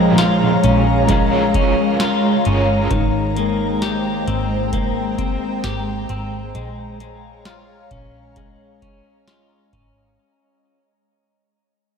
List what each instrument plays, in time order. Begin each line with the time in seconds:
Already playing: fingered electric bass A#1, overdriven electric guitar A#2 F3 G#3 C#4 F4 A#4, clean electric guitar F3 G#3, ambient pad G#3 C#5 F5 A#5
0.18 clean electric guitar F4, snare, closed hi-hat
0.64 fingered electric bass A#1, clean electric guitar C#4, closed hi-hat
1.08 overdriven electric guitar G#3 C#4, clean electric guitar G#3, kick, closed hi-hat
1.12 overdriven electric guitar F4 A#4
1.54 clean electric guitar C#4, kick, closed hi-hat
2.00 clean electric guitar F4, snare, closed hi-hat
2.44 fingered electric bass G1, clean electric guitar C#4, overdriven electric guitar C#4 F4 A#4, closed hi-hat
2.50 overdriven electric guitar G#3
2.91 fingered electric bass G#1, clean electric guitar D#3, ambient pad C5 G5, kick, closed hi-hat
3.37 clean electric guitar A#3, closed hi-hat
3.82 clean electric guitar G4, snare, closed hi-hat
4.27 fingered electric bass G#1, clean electric guitar C4, closed hi-hat
4.73 clean electric guitar A#3, ambient pad G5, kick, closed hi-hat
5.18 clean electric guitar C4, kick, closed hi-hat
5.64 fingered electric bass G#1, clean electric guitar G4, snare, closed hi-hat
6.09 fingered electric bass G#1, clean electric guitar C4, closed hi-hat
6.55 fingered electric bass A#1, clean electric guitar G#3, ambient pad C#5 F5, closed hi-hat
7.00 clean electric guitar G#3, closed hi-hat
7.45 clean electric guitar F4, snare, closed hi-hat
7.91 fingered electric bass A#1, clean electric guitar C#4, kick, closed hi-hat
8.36 clean electric guitar G#3, ambient pad D#5, kick, closed hi-hat
8.82 clean electric guitar C#4, kick, closed hi-hat
9.28 clean electric guitar F4, snare, closed hi-hat
9.73 fingered electric bass G#1, clean electric guitar C#4, kick, closed hi-hat